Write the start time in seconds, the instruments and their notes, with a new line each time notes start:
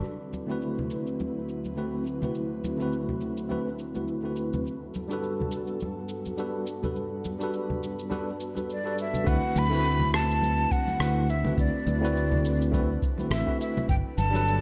0.04 analog synth pad D2 D3 F#3 C4 E4 B4, shaker
0.33 high conga, shaker
0.46 tine electric piano D3 A3 C4 E4, shaker
0.50 tine electric piano F#4 B4
0.62 shaker
0.78 high conga, low conga
0.90 shaker
1.07 shaker
1.19 high conga, shaker
1.49 shaker
1.64 high conga, shaker
1.76 tine electric piano D3 A3 C4 E4 F#4 B4, shaker
2.06 shaker
2.22 tine electric piano D3 A3 C4 E4 F#4 B4, high conga, low conga, shaker
2.35 shaker
2.64 high conga, shaker
2.77 tine electric piano D3 A3 C4 E4, shaker
2.81 tine electric piano F#4 B4
2.92 shaker
3.09 high conga, low conga
3.21 shaker
3.37 shaker
3.48 tine electric piano D3 A3 C4 E4 F#4 B4, high conga, shaker
3.79 shaker
3.94 tine electric piano D3 A3 C4 E4 F#4 B4, high conga, shaker
4.08 shaker
4.23 tine electric piano D3 A3 C4 E4 F#4 B4
4.36 shaker
4.53 high conga, low conga, shaker
4.65 analog synth pad G2 B3 F#4 A4, shaker
4.94 high conga, shaker
5.08 tine electric piano G3 D4 F#4, shaker
5.12 tine electric piano A4 B4
5.23 shaker
5.40 high conga, low conga
5.51 shaker
5.67 shaker
5.80 high conga, shaker
6.08 shaker
6.25 high conga, shaker
6.37 tine electric piano G3 D4 F#4 A4 B4, shaker
6.67 shaker
6.82 tine electric piano G3 D4 F#4 A4 B4, high conga, low conga, shaker
6.95 analog synth pad B4, shaker
7.24 high conga, shaker
7.39 tine electric piano G3 D4 F#4, shaker
7.43 tine electric piano A4 B4
7.53 shaker
7.70 high conga, low conga
7.83 shaker
7.99 shaker
8.10 tine electric piano G3 D4 F#4 A4 B4, high conga, shaker
8.40 shaker
8.55 tine electric piano G3 D4 F#4 A4 B4, high conga, shaker
8.70 flute D5, shaker
8.84 tine electric piano G3 D4 F#4 A4 B4
8.98 flute E5, shaker
9.14 high conga, low conga, shaker
9.24 fingered electric bass D2, tine electric piano D3 A3 C4 E4 F#4 B4, analog synth pad D3 C4 D4 E4 B4, kick, shaker
9.28 flute F#5
9.56 fingered electric bass D2, flute B5, high conga, shaker
9.69 tine electric piano D3 A3 C4 E4, shaker
9.74 tine electric piano F#4 B4
9.85 shaker
10.00 high conga, low conga
10.14 flute A5, cross-stick, shaker
10.31 shaker
10.42 high conga, shaker
10.71 flute F#5, kick, shaker
10.87 high conga, shaker
10.99 fingered electric bass D2, tine electric piano D3 A3 C4 E4 F#4 B4, cross-stick, shaker
11.29 flute E5, shaker
11.44 tine electric piano D3 A3 C4 E4 F#4 B4, high conga, low conga, shaker
11.58 fingered electric bass D2, flute D5, kick, shaker
11.87 fingered electric bass D2, high conga, shaker
12.00 tine electric piano D3 A3 C4 E4 F#4
12.05 tine electric piano B4, shaker
12.17 shaker
12.32 high conga, low conga
12.45 shaker
12.61 shaker
12.71 tine electric piano D3 A3 C4 E4 F#4 B4, kick, high conga, shaker
13.02 kick, shaker
13.17 tine electric piano D3 A3 C4 E4 F#4 B4, high conga, shaker
13.31 fingered electric bass A1, flute E5, cross-stick, shaker
13.45 tine electric piano D3 A3 C4 E4 F#4 B4, kick
13.60 flute E5, shaker
13.77 high conga, low conga, shaker
13.88 fingered electric bass G1, analog synth pad A3 A4, flute G5, kick, shaker
14.18 fingered electric bass G1, flute A5, high conga, shaker
14.30 tine electric piano F#3 G3 D4
14.35 tine electric piano A4 B4, shaker
14.48 shaker